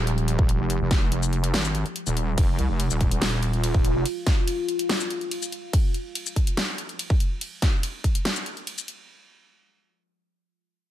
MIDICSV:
0, 0, Header, 1, 4, 480
1, 0, Start_track
1, 0, Key_signature, -4, "minor"
1, 0, Tempo, 419580
1, 800, Time_signature, 4, 2, 24, 8
1, 12479, End_track
2, 0, Start_track
2, 0, Title_t, "Ambient pad"
2, 0, Program_c, 0, 92
2, 0, Note_on_c, 0, 53, 88
2, 0, Note_on_c, 0, 56, 79
2, 0, Note_on_c, 0, 67, 92
2, 2699, Note_off_c, 0, 67, 0
2, 2719, Note_on_c, 0, 65, 98
2, 8434, Note_off_c, 0, 53, 0
2, 8434, Note_off_c, 0, 56, 0
2, 8458, Note_off_c, 0, 65, 0
2, 12479, End_track
3, 0, Start_track
3, 0, Title_t, "Wobble bass"
3, 0, Program_c, 1, 39
3, 0, Note_on_c, 1, 27, 94
3, 424, Note_off_c, 1, 27, 0
3, 444, Note_on_c, 1, 27, 96
3, 664, Note_off_c, 1, 27, 0
3, 684, Note_on_c, 1, 29, 99
3, 904, Note_off_c, 1, 29, 0
3, 924, Note_on_c, 1, 29, 97
3, 1262, Note_off_c, 1, 29, 0
3, 1280, Note_on_c, 1, 29, 96
3, 1742, Note_off_c, 1, 29, 0
3, 1760, Note_on_c, 1, 32, 99
3, 2104, Note_off_c, 1, 32, 0
3, 2364, Note_on_c, 1, 27, 92
3, 2701, Note_off_c, 1, 27, 0
3, 2720, Note_on_c, 1, 29, 102
3, 2941, Note_off_c, 1, 29, 0
3, 2959, Note_on_c, 1, 36, 98
3, 3063, Note_off_c, 1, 36, 0
3, 3082, Note_on_c, 1, 29, 100
3, 3303, Note_off_c, 1, 29, 0
3, 3322, Note_on_c, 1, 27, 95
3, 3543, Note_off_c, 1, 27, 0
3, 3562, Note_on_c, 1, 27, 99
3, 4263, Note_off_c, 1, 27, 0
3, 4283, Note_on_c, 1, 27, 96
3, 4504, Note_off_c, 1, 27, 0
3, 4522, Note_on_c, 1, 29, 100
3, 4621, Note_off_c, 1, 29, 0
3, 12479, End_track
4, 0, Start_track
4, 0, Title_t, "Drums"
4, 81, Note_on_c, 9, 42, 57
4, 195, Note_off_c, 9, 42, 0
4, 205, Note_on_c, 9, 42, 40
4, 319, Note_off_c, 9, 42, 0
4, 321, Note_on_c, 9, 42, 84
4, 435, Note_off_c, 9, 42, 0
4, 444, Note_on_c, 9, 36, 121
4, 558, Note_off_c, 9, 36, 0
4, 560, Note_on_c, 9, 42, 64
4, 674, Note_off_c, 9, 42, 0
4, 800, Note_on_c, 9, 42, 82
4, 914, Note_off_c, 9, 42, 0
4, 1039, Note_on_c, 9, 36, 107
4, 1040, Note_on_c, 9, 38, 65
4, 1040, Note_on_c, 9, 42, 52
4, 1154, Note_off_c, 9, 36, 0
4, 1154, Note_off_c, 9, 38, 0
4, 1154, Note_off_c, 9, 42, 0
4, 1280, Note_on_c, 9, 42, 78
4, 1394, Note_off_c, 9, 42, 0
4, 1403, Note_on_c, 9, 82, 63
4, 1518, Note_off_c, 9, 82, 0
4, 1519, Note_on_c, 9, 42, 54
4, 1634, Note_off_c, 9, 42, 0
4, 1643, Note_on_c, 9, 42, 82
4, 1758, Note_off_c, 9, 42, 0
4, 1759, Note_on_c, 9, 38, 125
4, 1873, Note_off_c, 9, 38, 0
4, 1883, Note_on_c, 9, 82, 62
4, 1998, Note_off_c, 9, 82, 0
4, 1999, Note_on_c, 9, 42, 55
4, 2113, Note_off_c, 9, 42, 0
4, 2124, Note_on_c, 9, 42, 37
4, 2238, Note_off_c, 9, 42, 0
4, 2239, Note_on_c, 9, 42, 80
4, 2353, Note_off_c, 9, 42, 0
4, 2363, Note_on_c, 9, 82, 62
4, 2478, Note_off_c, 9, 82, 0
4, 2479, Note_on_c, 9, 42, 63
4, 2594, Note_off_c, 9, 42, 0
4, 2719, Note_on_c, 9, 36, 116
4, 2719, Note_on_c, 9, 42, 78
4, 2719, Note_on_c, 9, 51, 64
4, 2834, Note_off_c, 9, 36, 0
4, 2834, Note_off_c, 9, 42, 0
4, 2834, Note_off_c, 9, 51, 0
4, 2959, Note_on_c, 9, 42, 49
4, 3074, Note_off_c, 9, 42, 0
4, 3199, Note_on_c, 9, 42, 76
4, 3199, Note_on_c, 9, 51, 43
4, 3314, Note_off_c, 9, 42, 0
4, 3314, Note_off_c, 9, 51, 0
4, 3324, Note_on_c, 9, 82, 66
4, 3438, Note_off_c, 9, 82, 0
4, 3439, Note_on_c, 9, 42, 54
4, 3440, Note_on_c, 9, 36, 66
4, 3554, Note_off_c, 9, 36, 0
4, 3554, Note_off_c, 9, 42, 0
4, 3563, Note_on_c, 9, 42, 81
4, 3678, Note_off_c, 9, 42, 0
4, 3679, Note_on_c, 9, 38, 127
4, 3679, Note_on_c, 9, 51, 65
4, 3794, Note_off_c, 9, 38, 0
4, 3794, Note_off_c, 9, 51, 0
4, 3919, Note_on_c, 9, 42, 50
4, 4034, Note_off_c, 9, 42, 0
4, 4043, Note_on_c, 9, 42, 37
4, 4158, Note_off_c, 9, 42, 0
4, 4160, Note_on_c, 9, 42, 82
4, 4160, Note_on_c, 9, 51, 47
4, 4274, Note_off_c, 9, 42, 0
4, 4274, Note_off_c, 9, 51, 0
4, 4284, Note_on_c, 9, 36, 111
4, 4398, Note_off_c, 9, 36, 0
4, 4399, Note_on_c, 9, 42, 60
4, 4514, Note_off_c, 9, 42, 0
4, 4640, Note_on_c, 9, 42, 80
4, 4640, Note_on_c, 9, 51, 66
4, 4754, Note_off_c, 9, 42, 0
4, 4754, Note_off_c, 9, 51, 0
4, 4880, Note_on_c, 9, 36, 102
4, 4880, Note_on_c, 9, 38, 58
4, 4880, Note_on_c, 9, 42, 49
4, 4994, Note_off_c, 9, 36, 0
4, 4994, Note_off_c, 9, 38, 0
4, 4994, Note_off_c, 9, 42, 0
4, 5120, Note_on_c, 9, 42, 73
4, 5120, Note_on_c, 9, 51, 44
4, 5234, Note_off_c, 9, 42, 0
4, 5234, Note_off_c, 9, 51, 0
4, 5360, Note_on_c, 9, 42, 53
4, 5474, Note_off_c, 9, 42, 0
4, 5483, Note_on_c, 9, 42, 82
4, 5598, Note_off_c, 9, 42, 0
4, 5599, Note_on_c, 9, 38, 121
4, 5599, Note_on_c, 9, 51, 66
4, 5714, Note_off_c, 9, 38, 0
4, 5714, Note_off_c, 9, 51, 0
4, 5724, Note_on_c, 9, 82, 69
4, 5838, Note_off_c, 9, 82, 0
4, 5840, Note_on_c, 9, 42, 53
4, 5955, Note_off_c, 9, 42, 0
4, 5964, Note_on_c, 9, 42, 36
4, 6078, Note_off_c, 9, 42, 0
4, 6080, Note_on_c, 9, 42, 78
4, 6080, Note_on_c, 9, 51, 49
4, 6194, Note_off_c, 9, 42, 0
4, 6194, Note_off_c, 9, 51, 0
4, 6203, Note_on_c, 9, 82, 67
4, 6318, Note_off_c, 9, 82, 0
4, 6320, Note_on_c, 9, 42, 58
4, 6434, Note_off_c, 9, 42, 0
4, 6560, Note_on_c, 9, 36, 114
4, 6560, Note_on_c, 9, 42, 81
4, 6560, Note_on_c, 9, 51, 71
4, 6674, Note_off_c, 9, 36, 0
4, 6675, Note_off_c, 9, 42, 0
4, 6675, Note_off_c, 9, 51, 0
4, 6801, Note_on_c, 9, 42, 50
4, 6915, Note_off_c, 9, 42, 0
4, 7040, Note_on_c, 9, 42, 81
4, 7040, Note_on_c, 9, 51, 48
4, 7155, Note_off_c, 9, 42, 0
4, 7155, Note_off_c, 9, 51, 0
4, 7164, Note_on_c, 9, 82, 68
4, 7278, Note_off_c, 9, 82, 0
4, 7280, Note_on_c, 9, 36, 60
4, 7280, Note_on_c, 9, 42, 56
4, 7394, Note_off_c, 9, 36, 0
4, 7394, Note_off_c, 9, 42, 0
4, 7404, Note_on_c, 9, 42, 84
4, 7518, Note_off_c, 9, 42, 0
4, 7520, Note_on_c, 9, 38, 118
4, 7520, Note_on_c, 9, 51, 70
4, 7635, Note_off_c, 9, 38, 0
4, 7635, Note_off_c, 9, 51, 0
4, 7760, Note_on_c, 9, 42, 53
4, 7874, Note_off_c, 9, 42, 0
4, 7884, Note_on_c, 9, 42, 38
4, 7999, Note_off_c, 9, 42, 0
4, 8000, Note_on_c, 9, 42, 81
4, 8000, Note_on_c, 9, 51, 49
4, 8115, Note_off_c, 9, 42, 0
4, 8115, Note_off_c, 9, 51, 0
4, 8124, Note_on_c, 9, 36, 106
4, 8238, Note_off_c, 9, 36, 0
4, 8240, Note_on_c, 9, 42, 61
4, 8355, Note_off_c, 9, 42, 0
4, 8481, Note_on_c, 9, 42, 84
4, 8481, Note_on_c, 9, 51, 72
4, 8595, Note_off_c, 9, 42, 0
4, 8595, Note_off_c, 9, 51, 0
4, 8720, Note_on_c, 9, 36, 104
4, 8720, Note_on_c, 9, 38, 57
4, 8720, Note_on_c, 9, 42, 55
4, 8835, Note_off_c, 9, 36, 0
4, 8835, Note_off_c, 9, 38, 0
4, 8835, Note_off_c, 9, 42, 0
4, 8961, Note_on_c, 9, 42, 80
4, 8961, Note_on_c, 9, 51, 50
4, 9075, Note_off_c, 9, 42, 0
4, 9075, Note_off_c, 9, 51, 0
4, 9200, Note_on_c, 9, 36, 62
4, 9201, Note_on_c, 9, 42, 57
4, 9314, Note_off_c, 9, 36, 0
4, 9315, Note_off_c, 9, 42, 0
4, 9325, Note_on_c, 9, 42, 88
4, 9439, Note_off_c, 9, 42, 0
4, 9441, Note_on_c, 9, 38, 119
4, 9441, Note_on_c, 9, 51, 71
4, 9555, Note_off_c, 9, 38, 0
4, 9555, Note_off_c, 9, 51, 0
4, 9565, Note_on_c, 9, 82, 67
4, 9679, Note_off_c, 9, 82, 0
4, 9681, Note_on_c, 9, 42, 56
4, 9795, Note_off_c, 9, 42, 0
4, 9805, Note_on_c, 9, 42, 39
4, 9919, Note_off_c, 9, 42, 0
4, 9920, Note_on_c, 9, 42, 85
4, 9920, Note_on_c, 9, 51, 51
4, 10034, Note_off_c, 9, 42, 0
4, 10034, Note_off_c, 9, 51, 0
4, 10044, Note_on_c, 9, 42, 39
4, 10044, Note_on_c, 9, 82, 68
4, 10158, Note_off_c, 9, 42, 0
4, 10158, Note_off_c, 9, 82, 0
4, 10160, Note_on_c, 9, 42, 64
4, 10274, Note_off_c, 9, 42, 0
4, 12479, End_track
0, 0, End_of_file